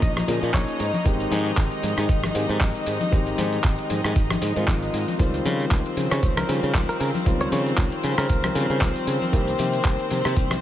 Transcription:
Already playing: F3 A#3 C#4 D#4 G#4 D#5
0.02 A#1 D#5, kick, closed hi-hat, cabasa
0.16 cross-stick, closed hi-hat, high conga, cabasa
0.27 A#2 F3 A#3 C#4 G#4, open hi-hat, low conga, cabasa
0.43 A#2, closed hi-hat, cabasa
0.54 A#1 C#5, kick, clap, closed hi-hat, high conga, cabasa
0.68 closed hi-hat, cabasa
0.80 G#2, open hi-hat, cabasa
0.93 closed hi-hat, high conga, cabasa
1.04 G#1 D#3 G#3 C4 G4, kick, closed hi-hat, cabasa
1.20 closed hi-hat, cabasa
1.31 G#2, open hi-hat, high conga, cabasa
1.46 closed hi-hat, cabasa
1.57 G#1, kick, clap, closed hi-hat, cabasa
1.72 closed hi-hat
1.83 G#2, open hi-hat, high conga, cabasa
1.98 G#2, cross-stick, closed hi-hat, cabasa
2.09 G#1, kick, closed hi-hat, cabasa
2.23 cross-stick, closed hi-hat, high conga, cabasa
2.34 G#2 D#3 G#3 C4 G4, open hi-hat, cabasa
2.49 G#2, closed hi-hat, cabasa
2.61 G#1, kick, clap, closed hi-hat, high conga, cabasa
2.75 closed hi-hat, cabasa
2.87 G#2, open hi-hat, cabasa
3.01 closed hi-hat, high conga, cabasa
3.11 G#1 D#3 G#3 C4 G4, kick, closed hi-hat, cabasa
3.27 closed hi-hat, cabasa
3.38 G#2, open hi-hat, high conga, cabasa
3.53 closed hi-hat, cabasa
3.64 G#1, kick, clap, closed hi-hat, cabasa
3.79 closed hi-hat
3.90 G#2, open hi-hat, high conga, cabasa
4.04 G#2, cross-stick, closed hi-hat, cabasa
4.16 G#1, kick, closed hi-hat, cabasa
4.30 cross-stick, closed hi-hat, high conga, cabasa
4.41 G#2, open hi-hat, low conga, cabasa
4.55 G#2 D#3 G#3 C4 F4, closed hi-hat, cabasa
4.68 G#1, kick, clap, closed hi-hat, high conga, cabasa
4.82 closed hi-hat, cabasa
4.94 G#2, open hi-hat, cabasa
5.08 closed hi-hat, high conga, cabasa
5.19 C#2 D#3 G3 C4 F4 C5, kick, closed hi-hat, cabasa
5.34 closed hi-hat, cabasa
5.45 C#3, open hi-hat, high conga, cabasa
5.60 closed hi-hat, cabasa
5.71 C#2, kick, clap, closed hi-hat, cabasa
5.86 closed hi-hat
5.97 C#3, open hi-hat, high conga, cabasa
6.11 C#3 C#5, cross-stick, closed hi-hat, cabasa
6.23 C#2, kick, closed hi-hat, cabasa
6.37 A#4, cross-stick, closed hi-hat, high conga, cabasa
6.48 C#3 D#3 G3 C4 F4, open hi-hat, cabasa
6.63 C#3, closed hi-hat, cabasa
6.74 C#2, kick, clap, closed hi-hat, high conga, cabasa
6.89 A#4, closed hi-hat, cabasa
7.00 C#3 A#4, open hi-hat, cabasa
7.14 closed hi-hat, high conga, cabasa
7.25 C#2 D#3 G3 C4 F4, kick, closed hi-hat, cabasa
7.41 C#5, closed hi-hat, cabasa
7.51 C#3 C#5, open hi-hat, high conga, cabasa
7.66 closed hi-hat, cabasa
7.77 C#2, kick, clap, closed hi-hat, cabasa
7.92 closed hi-hat
8.03 C#3, open hi-hat, high conga, cabasa
8.18 C#3 A#4, cross-stick, closed hi-hat, cabasa
8.29 C#2, kick, closed hi-hat, cabasa
8.44 cross-stick, closed hi-hat, high conga, cabasa
8.54 C#3 D#3 G3 C4 F4, open hi-hat, low conga, cabasa
8.70 C#3, closed hi-hat, cabasa
8.81 C#2, kick, clap, closed hi-hat, high conga, cabasa
8.96 closed hi-hat, cabasa
9.07 C#3, open hi-hat, cabasa
9.22 closed hi-hat, high conga, cabasa
9.32 C2 D#3 A#3 C4 G4, kick, closed hi-hat, cabasa
9.48 closed hi-hat, cabasa
9.59 C3, open hi-hat, high conga, cabasa
9.73 closed hi-hat, cabasa
9.85 C2, kick, clap, closed hi-hat, cabasa
9.99 closed hi-hat
10.11 C3, open hi-hat, high conga, cabasa
10.25 C3, cross-stick, closed hi-hat, cabasa
10.36 C2, kick, closed hi-hat, cabasa
10.51 cross-stick, closed hi-hat, high conga, cabasa

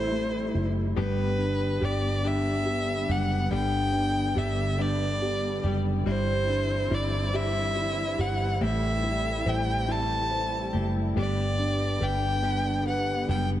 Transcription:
Already playing: A1 C3 E3 G3 A3 E4 C5
0.12 A3
0.54 F#1 E4
0.96 G1 G2 D3 G3 B3 D4 G4 B4
1.38 D4
1.80 G1 G3 B3 D4 G4
1.84 D5
2.23 G2 D3 G3 B3 D4 G4 E5
2.66 G4
3.08 F#1 G3 B3 D4 G4 F#5
3.51 G1 G2 D3 G3 B3 D4 G4 G5
3.93 D4
4.36 G1 G3 B3 D4 G4 E5
4.78 G2 D3 G3 B3 D4 G4 D5
5.22 G4
5.63 F#1 G3 B3 D4 G4
6.06 G1 E3 G3 C4 D4 E4 C5
6.49 D4
6.91 G1 G3 C4 D4 E4 D5
7.33 G3 C4 D4 E4 G4 E5
7.76 E4
8.18 G1 C4 D4 E4 G4 F#5
8.61 A1 A2 C3 G3 A3 C4 E4 G4 E5
9.04 E4
9.46 A1 G3 C4 E4 G4 C5 G5
9.88 A2 G3 C4 E4 G4 A5
10.31 C5
10.73 F#1 A3 C4 E4 G4
11.15 G1 G2 D3 G3 B3 D4 G4 D5
11.58 D4
12.01 G1 G3 B3 D4 G4 B4 G5
12.43 G2 D3 G3 B3 D4 G4
12.86 B4 F#5
13.28 F#1 G3 B3 D4 G4 G5

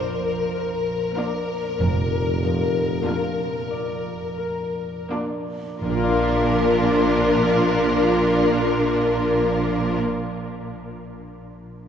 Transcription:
Already playing: A#2 F3 F4 D5
0.00 A#4
0.57 A#4
1.17 A#3 D4 F4 A#4 D5
1.80 F1 F2 A#2
2.43 F3
3.05 A#3 D4 F4 A#4
3.71 D5
4.38 A#4
5.11 A#3 D4 F4 A#4 D5
5.81 A#1 A#2 A#3 D4 F4 A#4
5.90 A#3
5.97 F4
6.04 D5
6.11 F5

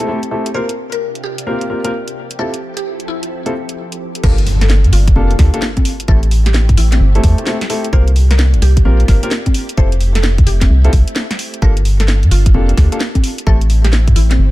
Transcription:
Already playing: C4 E4 G4 A4
0.08 A3 C4 E4 G4 A4
0.23 closed hi-hat
0.31 A3 C4 E4 G4 A4
0.46 closed hi-hat
0.54 C3 A#3 C4 D4 F4 G4 A#4 C5
0.69 closed hi-hat
0.92 A#4, closed hi-hat
1.15 closed hi-hat
1.24 G4
1.38 closed hi-hat
1.47 A#3 C4 F4 G4 A#4
1.61 closed hi-hat
1.70 A#3 C4 F4 G4 A#4
1.84 A#3 C4 F4 G4 A#4, closed hi-hat
2.08 closed hi-hat
2.16 F3 C4 E4 A4
2.31 closed hi-hat
2.39 C4 E4 F4 G4 A4
2.54 closed hi-hat
2.77 G4, closed hi-hat
3.00 closed hi-hat
3.08 E4
3.23 closed hi-hat
3.46 C4 E4 F4 G4 A4, closed hi-hat
3.69 closed hi-hat
3.92 closed hi-hat
4.15 closed hi-hat
4.23 G1 A#3 D4 F4 G4 A4 A#4, kick, crash, impact
4.38 closed hi-hat
4.47 open hi-hat
4.61 A4, snare, closed hi-hat
4.70 snare
4.84 G2, closed hi-hat
4.93 G1 F4, open hi-hat
5.08 kick, closed hi-hat
5.16 F1 A#3 D4 F4 G4 A4, high conga
5.31 closed hi-hat
5.39 D2 A#3 D4 F4 G4 A4, kick, snare, open hi-hat
5.54 A#3 D4 F4 G4 A4, closed hi-hat
5.62 snare
5.77 kick, closed hi-hat, high conga
5.85 A3 C4 E4 G4, open hi-hat
6.00 closed hi-hat
6.08 A1 A3 C4 E4 G4 A4, kick
6.23 closed hi-hat
6.31 open hi-hat
6.46 G4, snare, closed hi-hat
6.54 snare
6.69 A2, kick, closed hi-hat
6.77 A1 E4, open hi-hat
6.92 snare, closed hi-hat, high conga
7.01 G1
7.15 A3 C4 E4 G4 A4, closed hi-hat
7.24 E2 A3 C4 E4 G4 A4, kick, open hi-hat
7.38 A3 C4 E4 G4 A4, closed hi-hat
7.47 A3 C4 E4 G4 A4, snare
7.61 snare, closed hi-hat
7.70 A3 C4 E4 G4 A4, open hi-hat
7.84 closed hi-hat
7.93 C2 A#3 C4 D4 F4 G4 A#4 C5, kick
8.08 closed hi-hat
8.16 open hi-hat
8.31 A#4, snare, closed hi-hat
8.39 snare
8.54 G1, closed hi-hat
8.62 C2 G4, open hi-hat
8.77 kick, closed hi-hat
8.85 A#1 A#3 C4 F4 G4 A#4, high conga
9.00 closed hi-hat
9.08 G1 A#3 C4 F4 G4 A#4, kick, snare, open hi-hat
9.23 A#3 C4 F4 G4 A#4, closed hi-hat
9.31 snare
9.46 kick, closed hi-hat, high conga
9.54 A3 C4 E4, open hi-hat
9.69 closed hi-hat
9.77 F1 C4 E4 F4 G4 A4 C5, kick
9.92 closed hi-hat
10.01 open hi-hat
10.15 A4, snare, closed hi-hat
10.24 snare
10.38 F2, kick, closed hi-hat
10.47 F1 G4, open hi-hat
10.61 kick, snare, closed hi-hat, high conga
10.70 C2
10.85 C4 E4 F4 G4 A4, closed hi-hat
10.93 C2, kick, open hi-hat
11.08 closed hi-hat
11.16 snare
11.31 snare, closed hi-hat
11.39 open hi-hat
11.54 closed hi-hat
11.62 G1 A#3 D4 F4 G4 A4 A#4, kick
11.77 closed hi-hat
11.85 open hi-hat
12.00 A4, snare, closed hi-hat
12.08 snare
12.23 G2, closed hi-hat
12.31 G1 F4, open hi-hat
12.46 kick, closed hi-hat
12.54 F1 A#3 D4 F4 G4 A4, high conga
12.69 closed hi-hat
12.77 D2 A#3 D4 F4 G4 A4, kick, snare, open hi-hat
12.92 A#3 D4 F4 G4 A4, closed hi-hat
13.01 snare
13.15 kick, closed hi-hat, high conga
13.24 A3 C4 E4 G4, open hi-hat
13.38 closed hi-hat
13.47 A1 A3 C4 E4 G4 A4, kick
13.61 closed hi-hat
13.70 open hi-hat
13.84 G4, snare, closed hi-hat
13.93 snare
14.08 A2, kick, closed hi-hat
14.16 A1 E4, open hi-hat
14.31 snare, closed hi-hat, high conga
14.39 G1

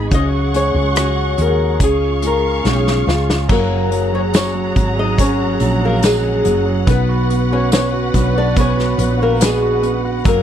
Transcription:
Already playing: G#3 B3 D#4 G#4
0.11 C#2 C#3 F#3 C#4 F#4 G#4 D#5 F#5 C#6, kick, closed hi-hat
0.53 G#3 C#5, closed hi-hat
0.74 C#2
0.95 C#3 F#3 C#4 F#4 G#4, cross-stick, closed hi-hat
1.37 D#2 G#4, closed hi-hat
1.42 A#4
1.79 C#2 C#3 G#3 C#4 F4 G#4 F5 C#6, kick, closed hi-hat
1.84 G#4
2.22 G#3 C#4 F4 G#4, closed hi-hat
2.27 A#4
2.64 B1 C#3 G#3 C#4 F4 G#4, snare
2.69 G#4
2.87 snare
3.07 C#2 C#4 F4 G#4, snare
3.30 snare
3.49 F#1 F#3 A#3 C#4 F#4 G#4 A#4 F#5 A#5, kick, crash
3.70 F#3
3.91 F#3, closed hi-hat
4.13 F#3 C#4 C#5
4.33 F#3 C#4 C#5, snare, closed hi-hat, tambourine
4.54 F#3
4.76 G#1 F#3 C#4 F#4 G#4, kick, closed hi-hat
4.97 F#3 D#4 D#5
5.18 F#3 A#3 C#4 F#4 G#4 C#5, kick, closed hi-hat
5.39 F#3
5.60 A#1 F#3 C#4 F#4 G#4, closed hi-hat
5.81 F#3 A#3
5.85 A#4
6.02 F#3 G#3 A#3 C#4 F#4 G#4, snare, closed hi-hat, tambourine
6.23 F#3
6.44 F#1 F#3 C#4 F#4 G#4, closed hi-hat
6.66 F#3
6.87 B1 B2 F#3 B3 F#4 B4, kick, closed hi-hat
7.09 F#4
7.30 B3, closed hi-hat
7.51 C#4 F#4 C#5
7.72 B3 C#4 C#5, snare, closed hi-hat, tambourine
7.93 F#4
8.14 B1 B3 D4 F#4 B4, kick, closed hi-hat
8.35 D4 F#4 D5
8.56 B2 F#3 B3 F#4 B4 C#5, kick, closed hi-hat
8.60 C#4
8.77 F#4, snare
8.98 A#1 B3 D4 F#4 B4, closed hi-hat
9.20 A#3 F#4 A#4
9.40 B3 D4 F#4 G#4 B4, snare, closed hi-hat, tambourine
9.45 G#3
9.62 F#4
9.83 B3, closed hi-hat
10.05 F#4
10.24 F#1 F#3 A#3 C#4 F#4 G#4 A#4 A#5, kick, closed hi-hat
10.29 A#3

